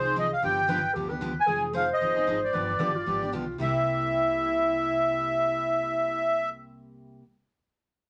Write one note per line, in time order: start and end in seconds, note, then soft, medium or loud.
0.00 0.32 C2 medium
0.00 0.38 G#4 medium
0.00 0.15 G#4 medium
0.00 0.17 C5 medium
0.05 0.15 C4 soft
0.05 0.15 D#4 soft
0.16 0.26 F3 medium
0.16 0.26 C4 medium
0.16 0.26 D#4 medium
0.16 0.26 G#4 medium
0.16 0.31 D#5 medium
0.33 0.43 F5 medium
0.42 0.85 G1 medium
0.42 0.60 D3 medium
0.42 0.60 F3 medium
0.42 0.61 B3 medium
0.42 0.61 D4 medium
0.42 0.61 G4 medium
0.42 0.67 G4 medium
0.42 0.92 G5 medium
0.68 0.78 D3 medium
0.68 0.79 F3 loud
0.68 0.79 B3 medium
0.68 0.79 D4 medium
0.68 0.79 G4 loud
0.68 0.96 B4 loud
0.94 1.38 D2 medium
0.94 1.10 D3 medium
0.94 1.10 F3 medium
0.94 1.10 B3 medium
0.94 1.10 D4 medium
0.94 1.11 G4 medium
0.94 1.08 G4 medium
1.09 1.21 B3 soft
1.09 1.20 D4 soft
1.09 1.20 G4 medium
1.09 1.48 B4 medium
1.21 1.31 D3 medium
1.21 1.31 F3 medium
1.21 1.32 B3 medium
1.21 1.32 D4 medium
1.21 1.32 G4 medium
1.40 1.63 G#5 medium
1.47 1.90 F1 medium
1.47 1.66 F3 medium
1.47 1.66 C4 medium
1.47 1.66 D#4 medium
1.47 1.74 G#4 medium
1.47 1.67 G#4 medium
1.73 1.84 F3 medium
1.73 1.84 C4 medium
1.73 1.85 D#4 medium
1.73 1.85 G#4 loud
1.73 2.56 C5 loud
1.73 1.89 F5 medium
1.93 2.41 D#5 medium
2.01 2.23 A#1 medium
2.01 2.16 F3 medium
2.01 2.16 C4 medium
2.01 2.16 D#4 medium
2.01 2.15 G#4 medium
2.16 2.26 C4 soft
2.16 2.27 D#4 medium
2.16 2.27 G#4 soft
2.27 2.50 G#1 medium
2.27 2.37 F3 medium
2.27 2.38 C4 medium
2.27 2.38 D#4 medium
2.27 2.38 G#4 medium
2.44 3.30 D5 medium
2.53 2.75 G1 medium
2.53 2.72 D3 medium
2.53 2.72 F3 medium
2.53 2.72 B3 medium
2.53 2.72 D4 medium
2.53 2.73 G4 medium
2.53 2.82 B4 medium
2.79 3.03 G1 medium
2.79 2.90 D3 medium
2.79 2.90 F3 medium
2.79 2.90 B3 medium
2.79 2.91 D4 medium
2.79 2.91 G4 medium
2.79 2.97 G4 medium
2.96 3.07 F4 medium
3.06 3.30 G#1 medium
3.06 3.21 D3 medium
3.06 3.21 F3 medium
3.06 3.22 B3 medium
3.06 3.22 D4 medium
3.06 3.35 G4 medium
3.06 3.21 G4 medium
3.22 3.32 B3 soft
3.22 3.32 D4 soft
3.22 3.32 G4 medium
3.33 3.56 B1 medium
3.33 3.43 D3 medium
3.33 3.44 F3 medium
3.33 3.44 B3 medium
3.33 3.44 D4 medium
3.33 3.59 F4 medium
3.33 3.44 G4 medium
3.58 7.18 C2 medium
3.58 7.22 C3 medium
3.58 7.22 G3 medium
3.58 7.23 A#3 medium
3.58 6.48 E4 medium
3.58 7.23 E4 medium
3.58 6.49 E5 medium
3.62 7.24 G4 medium